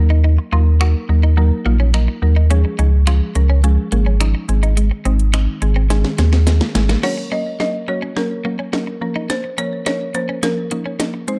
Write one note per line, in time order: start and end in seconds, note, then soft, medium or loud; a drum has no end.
0.00 0.38 D#2 loud
0.00 0.41 F#3 medium
0.00 0.41 A#3 medium
0.00 0.41 D#4 medium
0.00 0.41 A#4 loud
0.10 0.20 D#4 medium
0.24 0.34 D#4 medium
0.38 muted clean electric guitar stroke soft
0.52 0.95 D#2 medium
0.52 0.68 F#3 medium
0.52 0.68 A#3 medium
0.52 0.68 D#4 medium
0.52 0.62 F4 medium
0.52 0.68 A#4 loud
0.81 0.96 F#3 medium
0.81 0.96 A#3 medium
0.81 0.96 D#4 medium
0.81 0.90 F#4 medium
0.81 0.97 A#4 loud
0.81 finger snap loud
1.09 1.51 D#2 loud
1.09 1.25 F#3 medium
1.09 1.25 A#3 medium
1.09 1.25 D#4 medium
1.09 1.25 A#4 loud
1.09 muted clean electric guitar stroke soft
1.23 1.33 D#4 medium
1.37 1.53 F#3 loud
1.37 1.53 A#3 loud
1.37 1.53 D#4 loud
1.37 1.53 A#4 loud
1.37 muted clean electric guitar stroke soft
1.65 2.08 A#1 medium
1.65 1.81 F#3 medium
1.65 1.81 A#3 medium
1.65 1.75 A#3 medium
1.65 1.81 D#4 medium
1.65 1.81 F4 loud
1.80 1.89 C#4 medium
1.94 2.09 F#3 medium
1.94 2.10 A#3 medium
1.94 2.04 D#4 medium
1.94 2.10 D#4 medium
1.94 2.10 A#4 medium
1.94 finger snap loud
2.08 muted clean electric guitar stroke soft
2.22 2.65 D#2 loud
2.22 2.38 F#3 medium
2.22 2.38 A#3 medium
2.22 2.38 D#4 medium
2.22 2.38 A#4 loud
2.36 2.46 D#4 medium
2.50 2.66 F3 loud
2.50 2.66 G#3 loud
2.50 2.60 C#4 medium
2.50 2.66 C#4 loud
2.50 2.66 G#4 loud
2.50 closed hi-hat medium
2.65 muted clean electric guitar stroke soft
2.79 3.21 C#2 medium
2.79 2.94 F3 medium
2.79 2.95 G#3 medium
2.79 2.95 C#4 medium
2.79 2.88 D#4 medium
2.79 2.95 G#4 loud
2.79 closed hi-hat medium
3.07 3.23 F3 medium
3.07 3.23 G#3 medium
3.07 3.23 C#4 medium
3.07 3.17 F4 medium
3.07 3.23 G#4 loud
3.07 finger snap loud
3.07 closed hi-hat medium
3.35 3.78 C#2 loud
3.35 3.51 F3 medium
3.35 3.51 G#3 medium
3.35 3.51 C#4 medium
3.35 3.51 A#4 loud
3.35 muted clean electric guitar stroke soft
3.35 closed hi-hat medium
3.50 3.59 C#4 medium
3.64 3.79 F3 loud
3.64 3.79 G#3 loud
3.64 3.80 C#4 loud
3.64 3.80 G#4 loud
3.64 muted clean electric guitar stroke soft
3.64 closed hi-hat medium
3.92 4.34 G#1 medium
3.92 4.08 F3 medium
3.92 4.08 G#3 medium
3.92 4.02 A#3 medium
3.92 4.08 C#4 medium
3.92 4.08 G#4 loud
3.92 closed hi-hat medium
4.06 4.16 C#4 medium
4.20 4.36 F3 medium
4.20 4.36 G#3 medium
4.20 4.36 C#4 medium
4.20 4.30 D#4 medium
4.20 4.36 D#4 medium
4.20 finger snap loud
4.20 closed hi-hat medium
4.35 muted clean electric guitar stroke soft
4.48 4.91 G#1 loud
4.48 4.94 D#3 medium
4.48 4.94 G#3 medium
4.48 4.94 C4 medium
4.48 4.94 G#4 loud
4.48 closed hi-hat medium
4.63 4.72 D#4 medium
4.63 closed hi-hat medium
4.77 4.87 G#3 medium
4.77 closed hi-hat medium
4.91 muted clean electric guitar stroke soft
5.05 5.48 G#1 medium
5.05 5.21 D#3 medium
5.05 5.21 G#3 medium
5.05 5.15 C4 medium
5.05 5.21 C4 medium
5.05 5.21 D#4 loud
5.05 closed hi-hat medium
5.19 closed hi-hat soft
5.33 5.49 D#3 medium
5.33 5.49 G#3 medium
5.33 5.49 C4 medium
5.33 5.43 D#4 medium
5.33 5.49 D#4 loud
5.33 finger snap loud
5.33 closed hi-hat medium
5.62 6.04 G#1 loud
5.62 5.77 D#3 medium
5.62 5.78 G#3 medium
5.62 5.78 C4 medium
5.62 5.78 G#4 loud
5.62 muted clean electric guitar stroke soft
5.62 closed hi-hat medium
5.76 5.86 C4 medium
5.90 6.06 D#3 loud
5.90 6.06 G#3 loud
5.90 6.06 C4 loud
5.90 6.06 G#4 loud
5.90 muted clean electric guitar stroke soft
5.90 snare medium
5.90 closed hi-hat medium
6.04 snare medium
6.18 6.61 D#2 medium
6.18 6.34 D#3 medium
6.18 6.34 G#3 medium
6.18 6.28 A#3 medium
6.18 6.34 C4 medium
6.18 6.34 G#4 loud
6.18 snare medium
6.18 closed hi-hat medium
6.33 6.42 G#3 medium
6.33 snare medium
6.47 6.62 D#3 medium
6.47 6.62 G#3 medium
6.47 6.56 G#3 medium
6.47 6.63 C4 medium
6.47 6.63 G#4 loud
6.47 snare medium
6.47 closed hi-hat medium
6.61 muted clean electric guitar stroke soft
6.61 snare medium
6.75 6.96 G#1 loud
6.75 6.91 D#3 medium
6.75 6.91 G#3 medium
6.75 6.91 C4 medium
6.75 6.91 G#4 loud
6.75 snare loud
6.75 closed hi-hat medium
6.89 6.99 A#3 medium
6.89 snare medium
6.89 closed hi-hat soft
7.03 7.19 F#3 medium
7.03 7.19 A#3 medium
7.03 7.19 C#4 medium
7.03 7.13 F#4 medium
7.03 7.19 A#4 loud
7.03 7.33 C#5 loud
7.03 snare medium
7.03 crash medium
7.18 muted clean electric guitar stroke soft
7.31 7.47 F#3 medium
7.31 7.47 A#3 medium
7.31 7.41 C#4 medium
7.31 7.47 C#4 medium
7.31 7.48 A#4 medium
7.31 7.59 D#5 medium
7.60 7.76 F#3 medium
7.60 7.76 A#3 medium
7.60 7.76 C#4 medium
7.60 7.70 D#4 medium
7.60 7.76 A#4 medium
7.60 7.89 D#5 loud
7.60 snare medium
7.88 8.04 F#3 medium
7.88 8.04 A#3 medium
7.88 8.04 C#4 medium
7.88 8.04 F#4 medium
7.88 8.17 C#5 medium
7.88 muted clean electric guitar stroke soft
8.02 8.12 C#4 medium
8.16 8.32 F#3 loud
8.16 8.32 A#3 medium
8.16 8.32 C#4 medium
8.16 8.98 A#4 medium
8.16 8.32 A#4 loud
8.16 muted clean electric guitar stroke soft
8.16 snare medium
8.45 8.60 F#3 medium
8.45 8.61 A#3 medium
8.45 8.54 A#3 medium
8.45 8.61 C#4 medium
8.45 8.61 A#4 medium
8.59 8.69 C#4 medium
8.73 8.89 F#3 medium
8.73 8.89 A#3 medium
8.73 8.89 C#4 medium
8.73 8.83 D#4 medium
8.73 8.89 A#4 medium
8.73 snare medium
8.87 muted clean electric guitar stroke soft
9.01 9.47 F3 medium
9.01 9.47 A#3 medium
9.01 9.47 C#4 medium
9.01 9.47 A#4 loud
9.16 9.25 D#4 medium
9.30 9.39 A#3 medium
9.30 9.59 C5 loud
9.30 snare medium
9.30 closed hi-hat medium
9.44 muted clean electric guitar stroke soft
9.58 9.74 F3 medium
9.58 9.74 A#3 medium
9.58 9.68 C#4 medium
9.58 9.74 C#4 medium
9.58 9.74 A#4 medium
9.58 9.85 C#5 loud
9.58 closed hi-hat medium
9.86 10.02 F3 medium
9.86 10.02 A#3 medium
9.86 10.02 C#4 medium
9.86 9.96 D#4 medium
9.86 10.02 A#4 medium
9.86 10.16 C#5 medium
9.86 snare medium
9.86 closed hi-hat medium
10.14 10.30 F3 medium
10.14 10.30 A#3 medium
10.14 10.30 C#4 medium
10.14 10.30 A#4 medium
10.14 10.44 C5 medium
10.14 muted clean electric guitar stroke soft
10.14 closed hi-hat medium
10.29 10.39 C#4 medium
10.43 10.59 F3 loud
10.43 10.59 A#3 medium
10.43 10.59 C#4 medium
10.43 11.24 A#4 medium
10.43 10.59 A#4 loud
10.43 muted clean electric guitar stroke soft
10.43 snare medium
10.43 closed hi-hat medium
10.71 10.87 F3 medium
10.71 10.87 A#3 medium
10.71 10.81 A#3 medium
10.71 10.87 C#4 medium
10.71 10.87 D#4 medium
10.71 closed hi-hat medium
10.86 10.95 C#4 medium
10.99 11.15 F3 medium
10.99 11.15 A#3 medium
10.99 11.15 C#4 medium
10.99 11.09 D#4 medium
10.99 11.15 A#4 medium
10.99 snare medium
10.99 closed hi-hat medium
11.14 muted clean electric guitar stroke soft
11.28 11.39 G#3 loud
11.28 11.39 C4 medium
11.28 11.39 D#4 medium
11.28 11.39 C5 loud
11.28 closed hi-hat medium